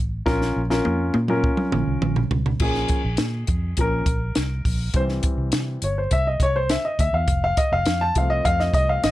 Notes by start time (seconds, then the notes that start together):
Already playing: A1
0.26 A#1 C#4 F4 A#4, kick, snare
0.42 snare
0.56 A#1
0.70 C#4 F4 A#4, snare
0.85 F2, high tom
1.14 A#2, high tom
1.28 C#4 F4 A#4, mid tom
1.44 kick
1.57 mid tom
1.72 A#1, mid tom
1.87 C2
2.01 A#1, mid tom
2.16 floor tom
2.31 C#2, floor tom
2.46 floor tom
2.60 A#1 F3 A#3 C#4 G#4, kick, crash
2.75 snare
2.89 kick, closed hi-hat
3.05 A#1
3.17 A#2, snare, closed hi-hat
3.47 F2, kick, closed hi-hat
3.77 A#1 F3 A#3 C#4 A#4, kick, closed hi-hat
4.06 A#1, kick, closed hi-hat
4.35 C2, snare, closed hi-hat
4.65 A#1, kick, open hi-hat
4.94 C2 E3 G3 C4 C5, kick, closed hi-hat
5.09 snare
5.23 kick, closed hi-hat
5.38 C2
5.52 C3, snare, closed hi-hat
5.82 G1 C#5, closed hi-hat
5.98 C5
6.11 C2 E5, kick, closed hi-hat
6.27 D#5
6.40 C2 C#5, kick, closed hi-hat
6.56 C5
6.69 E5, snare, closed hi-hat
6.85 D#5
6.99 D2 E5, kick, closed hi-hat
7.13 E2 F5
7.28 F1, kick, closed hi-hat
7.44 F5
7.57 D#5, kick, closed hi-hat
7.72 F1 F5
7.86 F2, snare, closed hi-hat
8.01 A5
8.15 C2 F3 A3 C4 F5, kick, closed hi-hat
8.30 D#5
8.45 F2 F5, kick, closed hi-hat
8.60 D#5, snare
8.73 C2 D#5, kick, closed hi-hat
8.89 F5
9.04 G#1 D#5, snare, closed hi-hat